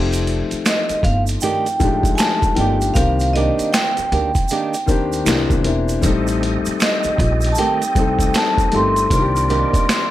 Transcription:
Already playing: F1 F3 A3 C4 D#4 G4
0.13 closed hi-hat, shaker
0.27 closed hi-hat
0.51 muted upright bass stroke, closed hi-hat, shaker
0.66 D#5, finger snap, snare, closed hi-hat, shaker
0.89 muted upright bass stroke, closed hi-hat, shaker
1.03 G1 F5, kick, closed hi-hat
1.27 closed hi-hat, shaker
1.41 D#3 A3 D4 G4 G5, closed hi-hat, shaker
1.66 closed hi-hat, shaker
1.80 A1 F3 G#3 D4 D#4, kick, closed hi-hat, shaker
1.84 A3 G4
2.03 kick, closed hi-hat, shaker
2.15 G#5 A5, finger snap, closed hi-hat, shaker
2.20 finger snap, snare
2.42 kick, closed hi-hat, shaker
2.55 G1 D#3 F3 A3 D4 G5, closed hi-hat
2.59 A3 D#4 G4
2.81 closed hi-hat, shaker
2.94 C2 D#3 A#3 C4 F5, kick, closed hi-hat, shaker
2.99 G4
3.20 closed hi-hat, shaker
3.33 D#3 A#3 D4 G4 D#5, closed hi-hat
3.59 muted upright bass stroke, closed hi-hat, shaker
3.73 G5, finger snap, snare, closed hi-hat, shaker
3.97 muted upright bass stroke, closed hi-hat, shaker
4.12 D2 D#3 A#3 D4 G4, closed hi-hat
4.35 kick, closed hi-hat, shaker
4.48 D#3 A#3 D4 G4, closed hi-hat, shaker
4.74 closed hi-hat, shaker
4.86 D#2 D#3 A#3 C4 D4, kick, closed hi-hat, shaker
4.91 G4
5.13 closed hi-hat, shaker
5.25 C2 E3 A#3 C4, finger snap, snare, closed hi-hat, shaker
5.28 D4 G4, finger snap
5.50 C2, kick, closed hi-hat, shaker
5.63 E1 E3 A#3 C4 D4, closed hi-hat
5.68 E4
5.89 closed hi-hat, shaker
6.01 A1 G3 A3 C4 D#4 G4 A4 D#5, kick, closed hi-hat, shaker
6.06 A4
6.27 closed hi-hat, shaker
6.43 closed hi-hat
6.66 muted upright bass stroke, closed hi-hat, shaker
6.80 D#5, finger snap, snare, shaker
6.82 finger snap, closed hi-hat
7.03 muted upright bass stroke, closed hi-hat, shaker
7.18 A#1, kick, closed hi-hat
7.41 closed hi-hat, shaker
7.52 A5, shaker
7.58 D#3 A3 C4 G4 G5, closed hi-hat
7.82 closed hi-hat, shaker
7.95 C2 G3 A3 C4 D#4, kick, closed hi-hat, shaker
8.00 A4
8.19 kick, closed hi-hat, shaker
8.34 finger snap, snare, closed hi-hat, shaker
8.36 A5, finger snap
8.58 kick, closed hi-hat, shaker
8.71 G1 D#3 G3 A3 C4 D#4 G4, closed hi-hat
8.76 A4 C6
8.96 closed hi-hat, shaker
9.10 C2 D#3 A#3 C4 D4 A#4 D5, kick, closed hi-hat, shaker
9.15 F4
9.21 G4
9.36 closed hi-hat, shaker
9.49 D#3 A#3 D4 G4, closed hi-hat
9.74 muted upright bass stroke, kick, closed hi-hat, shaker
9.89 finger snap, snare, closed hi-hat, shaker

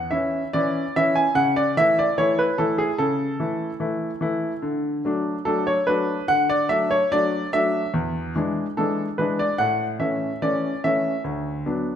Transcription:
Already playing: F#5
0.11 E3 C#4 E4 E5
0.53 E3 C#4 E4 D5
0.96 E3 C#4 E4 E5
1.15 G#5
1.35 C#3 F#5
1.56 D5
1.77 E3 A3 E4 E5
1.99 D5
2.18 E3 A3 E4 C#5
2.39 B4
2.58 E3 A3 E4 A4
2.78 G#4
2.98 C#3 A4
3.40 E3 A3 E4
3.80 E3 A3 E4
4.21 E3 A3 E4
4.62 D3
5.05 F#3 A3 D4
5.45 F#3 A3 D4 A4
5.67 C#5
5.87 F#3 A3 D4 B4
6.28 D3 F#5
6.50 D5
6.69 F#3 A3 D4 E5
6.91 C#5
7.12 F#3 A3 D4 D5
7.53 F#3 A3 D4 E5
7.94 E2
8.36 E3 G#3 D4
8.77 E3 G#3 D4 A4
9.18 E3 G#3 D4 B4
9.39 D5
9.58 A2 F#5
9.99 E3 A3 C#4 E5
10.42 E3 A3 C#4 D5
10.84 E3 A3 C#4 E5
11.24 D2
11.66 F#3 B3 D4

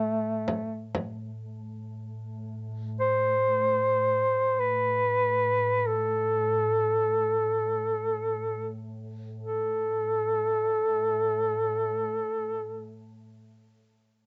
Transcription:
Already playing: A2 A3
0.48 frame drum
0.95 frame drum
1.99 A2
3.00 C5
4.60 B4
5.87 A4
9.43 A2 A4

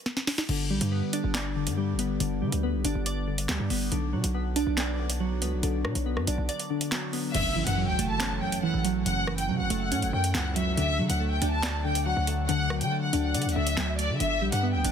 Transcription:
0.06 snare
0.17 snare
0.27 snare, open hi-hat
0.38 snare
0.49 G1 D3, crash
0.70 B1 G3
0.81 G2, closed hi-hat
0.92 B3
1.13 D4, closed hi-hat
1.24 G1
1.35 D5, snare, clap, closed hi-hat
1.56 D3
1.67 G2, closed hi-hat
1.78 G3
1.93 G1
1.99 B3, closed hi-hat
2.20 G1 D3, closed hi-hat
2.42 D3 G3
2.52 D2, closed hi-hat
2.63 B3
2.74 B1
2.84 G1 D4, closed hi-hat
2.95 G1
3.06 D5, closed hi-hat
3.27 D3
3.38 closed hi-hat
3.49 D2 G3, snare, clap
3.60 G2
3.70 G1 B3, open hi-hat
3.92 B1 D3, closed hi-hat
4.13 B2 F#3
4.24 B1, closed hi-hat
4.34 B3
4.56 D4, closed hi-hat
4.67 B1
4.77 D5, snare, clap, closed hi-hat
4.99 D3
5.10 closed hi-hat
5.20 F#3
5.42 C#2 B3, closed hi-hat
5.52 B1
5.63 B1 D3, closed hi-hat
5.85 B2 F#3, cross-stick
5.95 B1, closed hi-hat
6.06 B3
6.17 F#2, cross-stick
6.27 B1 D4, closed hi-hat
6.38 B1
6.49 D5, closed hi-hat
6.59 closed hi-hat
6.70 D3
6.81 closed hi-hat
6.92 F#3, snare, clap
7.13 B3, open hi-hat
7.35 F#1 F#2 E5, closed hi-hat, crash, impact
7.56 A1 E3
7.67 F#2 F#5, closed hi-hat
7.77 F#3
7.88 C#2 G5
7.99 F#1 A3, closed hi-hat
8.09 A5
8.20 C#4, snare, clap, closed hi-hat
8.42 F#2 G5
8.52 closed hi-hat
8.63 E3 F#5
8.74 A1
8.85 F#3, closed hi-hat
9.06 F#1 F#2 F#5, closed hi-hat
9.27 E3, cross-stick
9.38 G5, closed hi-hat
9.49 C#3 F#3
9.60 F#1 F#5
9.70 F#1 A3, closed hi-hat
9.81 F#5
9.92 A2 C#4, closed hi-hat
10.02 F#1, closed hi-hat
10.13 F#2 G5
10.24 closed hi-hat
10.34 C#2 E3 F#5, snare, clap
10.56 F#3 E5, closed hi-hat
10.77 D2 D3 E5, closed hi-hat
10.99 D3 F#3
11.09 D2 F#5, closed hi-hat
11.20 A3
11.31 G5
11.42 D2 D4, closed hi-hat
11.52 A5
11.63 D5, snare, clap, closed hi-hat
11.84 D3 G5
11.95 closed hi-hat
12.06 F#3 F#5
12.17 D2
12.27 A3, closed hi-hat
12.49 D2 D3 F#5, closed hi-hat
12.70 F#3, cross-stick
12.81 D3 G5, closed hi-hat
12.92 A3
13.03 F#5
13.13 D2 D4, closed hi-hat
13.24 F#5
13.34 D3 D5, closed hi-hat
13.42 D2, closed hi-hat
13.49 closed hi-hat
13.55 D2 D3 E5
13.67 closed hi-hat
13.77 D2 F#3, snare, clap
13.99 A3 D5, closed hi-hat
14.10 D3
14.20 G1 D3 E5, closed hi-hat
14.42 B1 G3
14.52 G2 F#5, closed hi-hat
14.63 B3
14.74 D2 G5
14.84 G1 D4, closed hi-hat

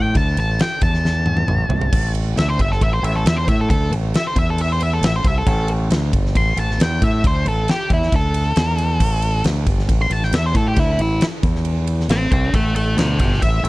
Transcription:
Already playing: A2 G5
0.15 D2 A5, kick, ride
0.37 A1 A5, ride
0.59 G5, snare, ride
0.81 E2 A5, kick, ride
0.94 snare
1.05 snare
1.26 high tom
1.37 high tom
1.48 A1, mid tom
1.69 C2, floor tom
1.81 floor tom
1.92 A1, kick, crash
2.15 ride
2.36 D2 E5, snare, ride
2.49 C5
2.59 G1 E5, kick, ride
2.72 A4, snare
2.81 A1 E5, kick, ride
2.93 C5
3.03 A1 E5, ride
3.16 A4
3.25 E2 E5, snare, ride
3.36 C5
3.48 A2 E5, kick, ride
3.61 A4
3.70 D2 A4, kick, ride
3.91 A1, ride
4.14 E5, snare, ride
4.27 C5
4.36 E2 E5, kick, ride
4.50 A4
4.58 E5, ride
4.72 C5
4.80 E5, ride
4.93 A4
5.01 A1 E5, snare, ride
5.16 C5
5.24 C2 E5, kick, ride
5.38 A4
5.47 A1 A4, kick, ride
5.68 ride
5.90 D2, snare, ride
6.13 G1, kick, ride
6.26 snare
6.35 A1 C6, kick, ride
6.56 A1 A5, ride
6.71 snare
6.79 E2 G5, snare, ride
7.02 A2 E5, kick, ride
7.24 D2 C5, kick, ride
7.46 A1 A4, ride
7.68 G4, snare, ride
7.90 E2 E4, kick, ride
8.03 snare
8.12 D2 A4, kick, ride
8.34 ride
8.56 E2, snare, ride
8.78 ride
9.00 A1, kick, crash
9.22 ride
9.44 D2, snare, ride
9.67 G1, kick, ride
9.79 snare
9.88 A1, kick, ride
10.02 C6
10.10 A1 A5, ride
10.23 G5, snare
10.32 E2 E5, snare, ride
10.46 C5
10.55 A2 A4, kick, ride
10.68 G4
10.76 D2 E4, kick, ride
10.98 A1 E4, ride
11.21 snare, ride
11.43 E2, kick, ride
11.55 snare
11.65 ride
11.87 ride
12.00 snare
12.09 A1 G5 C6, snare, ride
12.31 C2 G5 C6, kick, ride
12.53 A1 E5 A5, kick, ride
12.76 E5 A5, ride
12.97 D2 E5 G5, snare, ride
13.19 G1 E5 G5, kick, ride
13.33 snare
13.42 A1 E5, kick, ride
13.63 A1, ride

